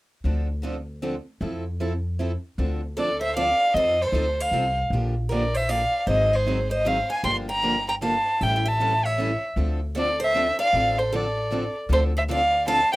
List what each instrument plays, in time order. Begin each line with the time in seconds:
0.24 upright bass D2, steel-string acoustic guitar D3 F3 C4 D4 A4
0.62 steel-string acoustic guitar D3 F3 C4 D4 A4
1.02 steel-string acoustic guitar D3 F3 C4 D4 A4
1.41 upright bass F2, steel-string acoustic guitar F3 C4 E4 A4
1.80 steel-string acoustic guitar F3 C4 E4 A4
2.19 steel-string acoustic guitar F3 C4 E4 A4
2.58 upright bass D2, steel-string acoustic guitar D3 F3 C4 D4 A4
2.97 steel-string acoustic guitar D3 F3 C4 D4 A4, violin D5
3.21 steel-string acoustic guitar C5, violin E5
3.37 steel-string acoustic guitar D3 F3 C4 D4 A4 D5, violin F5
3.74 upright bass F2, steel-string acoustic guitar F3 C4 D#4 A4 C5, violin D#5
4.02 steel-string acoustic guitar A4, violin C5
4.12 upright bass D2, steel-string acoustic guitar F3 C4 D#4 A4
4.40 steel-string acoustic guitar C5, violin F5
4.51 upright bass C2, steel-string acoustic guitar F3 C4 D#4 A4
4.90 upright bass A#1, steel-string acoustic guitar D3 F3 A#3 D4 G4
5.29 steel-string acoustic guitar D3 F3 A#3 D4 G4 A#4, violin D5
5.54 steel-string acoustic guitar C5, violin E5
5.69 steel-string acoustic guitar D3 F3 A#3 D4 G4 D5, violin F5
6.07 upright bass G#1, steel-string acoustic guitar D#3 F#3 C4 D#4 G#4 C5, violin D#5
6.33 steel-string acoustic guitar G#4, violin C5
6.48 steel-string acoustic guitar D#3 F#3 C4 D#4 G#4
6.71 steel-string acoustic guitar C5, violin D#5
6.85 steel-string acoustic guitar D#3 F#3 C4 D#4 G#4 C5, violin F5
7.10 steel-string acoustic guitar F5, violin G#5
7.23 upright bass G1, steel-string acoustic guitar D3 F3 A#3 D4 G4 G5, violin C6
7.49 steel-string acoustic guitar G5, violin A#5
7.62 steel-string acoustic guitar D3 F3 A#3 D4 G4
7.88 steel-string acoustic guitar G5, violin A#5
8.02 steel-string acoustic guitar D3 F3 A#3 D4 G4 F5, violin A5
8.41 upright bass A1, steel-string acoustic guitar E3 G3 C#4 E4 A4 E5, violin G5
8.56 steel-string acoustic guitar E5, violin G5
8.66 steel-string acoustic guitar E5, violin A5
8.81 steel-string acoustic guitar E3 G3 C#4 E4 A4
9.05 steel-string acoustic guitar C#5, violin E5
9.19 steel-string acoustic guitar E3 G3 C#4 E4 A4
9.56 upright bass D2, steel-string acoustic guitar D3 F3 C4 D4 A4
9.95 steel-string acoustic guitar D3 F3 C4 D4 A4, violin D5
10.20 steel-string acoustic guitar C5, violin E5
10.36 steel-string acoustic guitar D3 F3 C4 D4 A4
10.59 steel-string acoustic guitar D5, violin F5
10.73 upright bass A1, steel-string acoustic guitar D3 F3 C4 D4 A4
10.98 steel-string acoustic guitar A4, violin C5
11.12 steel-string acoustic guitar D3 F3 C4 D4 A4, violin D5
11.51 steel-string acoustic guitar D3 F3 C4 D4 A4
11.89 upright bass D2, steel-string acoustic guitar D3 F3 C4 D4 A4, violin C5
12.17 steel-string acoustic guitar C5, violin E5
12.28 steel-string acoustic guitar D3 F3 C4 D4 A4 D5, violin F5
12.67 steel-string acoustic guitar D3 F3 C4 D4 A4 F5, violin A5
12.92 violin G5